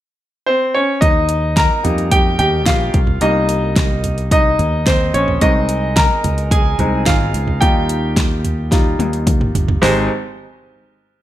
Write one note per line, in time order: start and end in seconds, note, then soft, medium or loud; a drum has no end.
0.46 0.73 C4 medium
0.46 0.75 C5 medium
0.74 1.01 C#4 medium
0.74 1.03 C#5 medium
1.01 1.67 D#2 medium
1.01 1.53 D#4 medium
1.01 1.58 D#5 medium
1.01 kick loud
1.01 closed hi-hat medium
1.29 closed hi-hat medium
1.56 2.08 A#4 medium
1.56 2.13 A#5 loud
1.56 kick loud
1.56 snare medium
1.56 closed hi-hat medium
1.83 2.36 F2 medium
1.83 2.20 G3 soft
1.83 2.21 A#3 soft
1.83 2.21 D#4 medium
1.83 closed hi-hat medium
1.83 floor tom medium
1.98 closed hi-hat soft
2.11 2.38 G4 medium
2.11 2.37 G5 medium
2.11 kick loud
2.11 closed hi-hat medium
2.39 2.67 D#2 medium
2.39 2.65 G4 medium
2.39 2.67 G5 medium
2.39 closed hi-hat medium
2.39 floor tom medium
2.66 2.92 A#1 medium
2.66 3.18 F4 medium
2.66 3.18 F5 medium
2.66 kick loud
2.66 snare loud
2.66 closed hi-hat medium
2.94 3.20 C2 medium
2.94 kick loud
2.94 closed hi-hat medium
3.07 floor tom medium
3.21 4.55 C2 medium
3.21 4.00 G3 soft
3.21 4.00 A#3 soft
3.21 4.28 D#4 medium
3.21 4.31 D#5 medium
3.21 closed hi-hat medium
3.49 closed hi-hat medium
3.76 kick loud
3.76 snare medium
3.76 closed hi-hat medium
4.04 closed hi-hat medium
4.04 floor tom medium
4.18 closed hi-hat soft
4.31 4.83 D#4 medium
4.31 4.89 D#5 medium
4.31 kick loud
4.31 closed hi-hat medium
4.59 5.10 D#2 medium
4.59 closed hi-hat soft
4.59 floor tom medium
4.87 5.13 C4 medium
4.87 5.15 C5 medium
4.87 kick loud
4.87 snare loud
4.87 closed hi-hat medium
5.14 5.40 A#1 medium
5.14 5.40 C#4 medium
5.14 5.42 C#5 medium
5.14 closed hi-hat medium
5.28 floor tom medium
5.41 6.07 C2 medium
5.41 6.20 G#3 medium
5.41 6.20 C4 soft
5.41 5.93 D#4 medium
5.41 5.98 D#5 medium
5.41 kick medium
5.41 closed hi-hat medium
5.69 closed hi-hat medium
5.96 6.48 A#4 medium
5.96 6.53 A#5 medium
5.96 kick loud
5.96 snare loud
5.96 closed hi-hat medium
6.24 6.75 C#2 medium
6.24 closed hi-hat medium
6.24 floor tom medium
6.38 closed hi-hat soft
6.51 7.03 G#4 medium
6.51 7.08 G#5 medium
6.51 kick loud
6.51 closed hi-hat medium
6.79 7.05 C2 medium
6.79 7.04 G#3 soft
6.79 7.04 C4 soft
6.79 7.04 D#4 medium
6.79 closed hi-hat medium
6.79 floor tom medium
7.06 7.32 G#1 medium
7.06 7.58 F4 medium
7.06 7.63 F5 medium
7.06 kick loud
7.06 snare loud
7.06 closed hi-hat medium
7.34 7.60 C#2 medium
7.34 closed hi-hat medium
7.47 floor tom medium
7.60 8.95 D#2 loud
7.60 8.39 G3 soft
7.60 8.40 D#4 soft
7.60 8.40 F4 medium
7.60 8.68 G4 medium
7.60 8.67 G5 medium
7.60 kick loud
7.60 closed hi-hat medium
7.89 closed hi-hat medium
8.17 kick loud
8.17 snare loud
8.17 closed hi-hat medium
8.45 closed hi-hat medium
8.45 floor tom medium
8.71 8.96 G3 soft
8.71 8.96 D#4 soft
8.71 8.96 F4 medium
8.71 kick loud
8.71 snare medium
8.71 closed hi-hat medium
8.99 9.50 D#2 medium
8.99 closed hi-hat medium
8.99 high tom medium
9.13 closed hi-hat medium
9.27 kick loud
9.27 closed hi-hat medium
9.27 mid tom medium
9.41 mid tom medium
9.55 9.80 G1 medium
9.55 closed hi-hat medium
9.55 floor tom medium
9.68 floor tom medium
9.82 10.07 G#1 medium
9.82 10.07 G#3 medium
9.82 10.07 D#4 medium
9.82 10.07 G4 medium
9.82 10.07 C5 medium
9.82 snare medium
9.82 open hi-hat medium